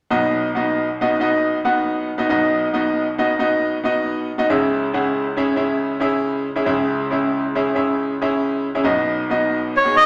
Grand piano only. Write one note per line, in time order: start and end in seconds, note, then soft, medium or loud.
0.10 2.25 B1 medium
0.10 2.25 B2 medium
0.10 0.48 B3 medium
0.10 0.48 D#4 medium
0.10 0.48 F#4 medium
0.10 0.48 D#5 medium
0.55 0.86 B3 medium
0.55 0.87 D#4 medium
0.55 0.87 F#4 medium
0.55 0.87 D#5 medium
1.01 1.15 B3 medium
1.01 1.15 D#4 medium
1.01 1.15 F#4 medium
1.01 1.15 D#5 medium
1.20 1.57 B3 medium
1.20 1.57 D#4 medium
1.20 1.57 F#4 medium
1.20 1.58 D#5 medium
1.65 2.09 B3 medium
1.65 2.09 D#4 medium
1.65 2.09 F#4 medium
1.65 2.09 F#5 medium
2.18 2.26 B3 medium
2.18 2.26 D#4 medium
2.18 2.26 F#4 medium
2.18 2.26 D#5 medium
2.29 4.44 B1 medium
2.29 4.44 B2 medium
2.29 2.66 B3 medium
2.29 2.66 D#4 medium
2.29 2.67 F#4 medium
2.29 2.67 D#5 medium
2.73 3.05 B3 medium
2.73 3.05 D#4 medium
2.73 3.05 F#4 medium
2.73 3.05 D#5 medium
3.18 3.33 B3 medium
3.18 3.33 D#4 medium
3.18 3.33 F#4 medium
3.18 3.33 D#5 medium
3.39 3.76 B3 medium
3.39 3.76 D#4 medium
3.39 3.76 F#4 medium
3.39 3.76 D#5 medium
3.84 4.28 B3 medium
3.84 4.28 D#4 medium
3.84 4.28 F#4 medium
3.84 4.29 D#5 medium
4.38 4.45 B3 medium
4.38 4.45 D#4 medium
4.38 4.45 F#4 medium
4.38 4.46 D#5 medium
4.49 6.63 C#2 medium
4.49 6.63 C#3 medium
4.49 4.86 C#4 medium
4.49 4.86 E4 medium
4.49 4.86 G#4 medium
4.49 4.86 E5 medium
4.93 5.24 C#4 medium
4.93 5.25 E4 medium
4.93 5.25 G#4 medium
4.93 5.25 F#5 medium
5.37 5.51 C#4 medium
5.37 5.52 E4 medium
5.37 5.52 G#4 medium
5.37 5.52 E5 medium
5.56 5.94 C#4 medium
5.56 5.94 E4 medium
5.56 5.94 G#4 medium
5.56 5.94 E5 medium
6.00 6.45 C#4 medium
6.00 6.45 E4 medium
6.00 6.46 G#4 medium
6.00 6.46 E5 medium
6.56 6.63 C#4 medium
6.56 6.63 E4 medium
6.56 6.64 G#4 medium
6.56 6.64 E5 medium
6.65 8.81 C#2 medium
6.65 8.81 C#3 medium
6.65 7.03 C#4 medium
6.65 7.03 E4 medium
6.65 7.04 G#4 medium
6.65 7.04 E5 medium
7.11 7.42 C#4 medium
7.11 7.42 E4 medium
7.11 7.43 G#4 medium
7.11 7.43 E5 medium
7.55 7.70 C#4 medium
7.55 7.70 E4 medium
7.55 7.70 G#4 medium
7.55 7.71 E5 medium
7.75 8.12 C#4 medium
7.75 8.13 E4 medium
7.75 8.13 G#4 medium
7.75 8.13 E5 medium
8.21 8.65 C#4 medium
8.21 8.66 E4 medium
8.21 8.65 G#4 medium
8.21 8.66 E5 medium
8.75 8.82 C#4 medium
8.75 8.82 E4 medium
8.75 8.82 G#4 medium
8.75 8.82 E5 medium
8.84 10.06 B1 medium
8.84 10.06 B2 medium
8.84 9.22 B3 medium
8.84 9.22 D#4 medium
8.84 9.22 F#4 medium
8.84 9.22 D#5 medium
9.30 9.74 B3 medium
9.30 9.75 D#4 medium
9.30 9.75 F#4 medium
9.30 9.75 D#5 medium
9.84 10.06 B3 medium
9.84 10.06 D#4 medium
9.84 10.06 F#4 medium
9.84 10.06 G#4 medium